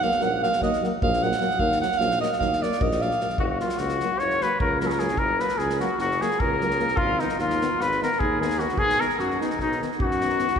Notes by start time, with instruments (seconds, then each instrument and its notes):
0.02 euphonium F#3 A#3, alto saxophone F5, snare
0.11 snare
0.20 tuba A#1, euphonium F#3 A#3, alto saxophone F#5, snare
0.41 euphonium F#3 A#3, alto saxophone F5, snare
0.52 snare
0.60 tuba D#2, euphonium F#3 A#3, alto saxophone D#5, kick, snare
0.73 snare
0.82 euphonium F#3 A#3, snare
1.02 tuba A#1, euphonium F#3 A#3, alto saxophone F5, kick
1.13 snare
1.21 euphonium F#3 A#3, alto saxophone F#5, snare
1.32 snare
1.40 euphonium F#3 A#3, snare
1.51 snare
1.57 tuba D#2, euphonium F#3 A#3, alto saxophone F5, kick
1.72 snare
1.80 euphonium F#3 A#3, alto saxophone F#5, snare
1.92 snare
1.98 tuba A#1, euphonium F#3 A#3, alto saxophone F5, snare
2.11 snare
2.20 euphonium F#3 A#3, alto saxophone D#5, snare
2.32 snare
2.39 tuba D#2, euphonium F#3 A#3, alto saxophone F5, kick, snare
2.53 snare
2.61 euphonium F#3 A#3, alto saxophone D5, snare
2.72 snare
2.79 tuba A#1, euphonium F#3 A#3, alto saxophone D#5, kick
2.91 snare
3.01 euphonium F#3 A#3, alto saxophone F5, snare
3.11 snare
3.19 euphonium F#3 A#3, snare
3.30 snare
3.38 tuba F#1, alto saxophone F#4, trumpet F#4, kick
3.43 trumpet F#4, alto saxophone F#4
3.49 trumpet F#4, alto saxophone F#4
3.60 euphonium F#3 A#3, trumpet F4, alto saxophone F4, snare
3.69 snare
3.78 tuba C#2, trumpet F#4, alto saxophone F#4, snare
3.89 snare
4.00 euphonium F#3 A#3, snare
4.19 tuba F#1, trumpet C#5, alto saxophone C#5, snare
4.30 snare
4.41 euphonium F#3 A#3, alto saxophone B4, trumpet B4, snare
4.60 tuba C#2, alto saxophone A#4, trumpet A#4, kick
4.80 euphonium F#3 A#3, trumpet A#4, alto saxophone A#4, snare
4.85 alto saxophone G#4, trumpet G#4
4.90 alto saxophone A#4, trumpet A#4, snare
4.99 euphonium F#3 A#3, trumpet G#4, alto saxophone G#4, snare
5.08 snare
5.17 tuba F#1, alto saxophone A#4, trumpet A#4, kick
5.39 euphonium F#3 A#3, alto saxophone B4, trumpet B4, snare
5.49 snare
5.57 tuba C#2, trumpet G#4, alto saxophone G#4, snare
5.70 snare
5.80 euphonium F#3 A#3, trumpet F#4, alto saxophone F#4, snare
5.98 tuba F#1, alto saxophone F#4, trumpet F#4, snare
6.11 snare
6.20 euphonium F#3 A#3, trumpet G#4, alto saxophone G#4, snare
6.31 snare
6.39 tuba C#2, trumpet A#4, alto saxophone A#4, kick
6.60 euphonium F#3 A#3, snare
6.71 snare
6.77 euphonium F#3 A#3, snare
6.88 snare
6.97 tuba G#1, trumpet F4, alto saxophone F4, kick
7.19 euphonium D#3 B3, trumpet D#4, alto saxophone D#4, snare
7.29 snare
7.38 tuba D#2, trumpet F4, alto saxophone F4, snare
7.50 snare
7.60 euphonium D#3 B3, snare
7.79 tuba G#1, alto saxophone B4, trumpet B4, snare
7.91 snare
8.01 euphonium D#3 B3, alto saxophone A#4, trumpet A#4, snare
8.12 snare
8.19 tuba D#2, trumpet G#4, alto saxophone G#4, kick
8.39 euphonium D#3 B3, trumpet G#4, alto saxophone G#4, snare
8.50 snare
8.59 euphonium D#3 B3, trumpet F#4, alto saxophone F#4, snare
8.69 snare
8.77 tuba B1, trumpet G#4, alto saxophone G#4, kick
8.89 snare
8.99 euphonium D#3 B3, trumpet A#4, alto saxophone A#4, snare
9.09 snare
9.18 tuba F#2, trumpet F#4, alto saxophone F#4, snare
9.31 snare
9.40 euphonium D#3 B3, trumpet D#4, alto saxophone D#4, snare
9.50 snare
9.58 tuba B1, trumpet D#4, alto saxophone D#4, kick, snare
9.72 snare
9.81 euphonium D#3 B3, snare
9.92 snare
9.99 tuba F#2, alto saxophone F#4, trumpet F#4, kick
10.11 snare
10.21 euphonium D#3 B3, snare
10.30 snare
10.39 euphonium D#3 B3, snare
10.48 snare
10.56 kick